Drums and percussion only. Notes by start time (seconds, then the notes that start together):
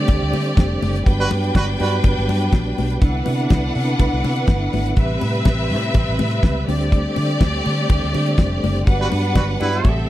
0.08 kick, closed hi-hat, muted conga
0.34 open hi-hat, muted conga
0.46 closed hi-hat
0.57 kick, snare, closed hi-hat, high conga
0.83 open hi-hat, high conga
0.96 closed hi-hat
1.06 kick, closed hi-hat
1.31 open hi-hat, muted conga
1.44 closed hi-hat
1.55 kick, snare, closed hi-hat, high conga
1.79 open hi-hat, muted conga
1.92 closed hi-hat
2.04 kick, closed hi-hat, muted conga
2.18 snare
2.29 open hi-hat, muted conga
2.41 closed hi-hat
2.53 kick, snare, closed hi-hat, high conga
2.78 open hi-hat, high conga
2.90 closed hi-hat
3.02 kick, closed hi-hat
3.26 open hi-hat, muted conga
3.40 closed hi-hat
3.50 kick, snare, closed hi-hat, high conga
3.75 open hi-hat
3.87 closed hi-hat
3.99 kick, closed hi-hat, muted conga
4.24 open hi-hat, muted conga
4.36 closed hi-hat
4.47 kick, snare, closed hi-hat, high conga
4.73 open hi-hat, high conga
4.86 closed hi-hat
4.97 kick, closed hi-hat
5.21 open hi-hat, muted conga
5.35 closed hi-hat
5.45 kick, snare, closed hi-hat, high conga
5.70 open hi-hat
5.83 closed hi-hat
5.94 kick, closed hi-hat, muted conga
6.19 open hi-hat, muted conga, low conga
6.31 closed hi-hat
6.43 kick, snare, closed hi-hat, high conga
6.69 open hi-hat, high conga
6.81 closed hi-hat
6.92 kick, closed hi-hat
7.16 open hi-hat, muted conga
7.30 closed hi-hat
7.41 kick, snare, closed hi-hat, high conga
7.65 open hi-hat, muted conga
7.78 closed hi-hat
7.89 kick, closed hi-hat, muted conga
8.04 snare
8.14 open hi-hat, muted conga
8.26 closed hi-hat
8.38 kick, snare, closed hi-hat, high conga
8.63 open hi-hat, high conga
8.76 closed hi-hat
8.87 kick, closed hi-hat
9.12 open hi-hat, muted conga
9.25 closed hi-hat
9.35 kick, snare, closed hi-hat, high conga
9.60 open hi-hat, muted conga
9.73 closed hi-hat
9.84 kick, closed hi-hat, muted conga